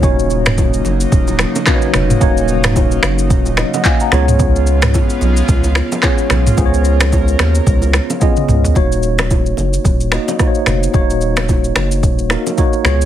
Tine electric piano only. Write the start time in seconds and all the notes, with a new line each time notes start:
0.02 A#3 C#4 D#4 F#4 C#5
1.66 A#3 C#4 D#4 F#4 B4
1.75 C#5
2.20 A#3 C#4 D#4 F#4 C#5
3.58 D#5
3.74 D#5 F#5
3.86 F5 G#5
4.01 F#5 A#5
4.11 B3 C#4 F4 G#4 C#5
6.02 B3 C#4 F4 G#4 C#5
6.57 B3 C#4 F4 G#4 C5
6.66 C#5
8.20 B3 C#4 F4 G#4 D#5
8.74 A#3 D#4 F#4 C#5
10.11 A#3 D#4 F#4 D#5
10.38 A#3 D#4 F#4 C5
10.47 C#5
10.93 A#3 D#4 F#4 C#5
12.29 A#3 D#4 F#4 A#4
12.57 A#3 D#4 F#4 C#5
12.84 B3 F4 G#4 C#5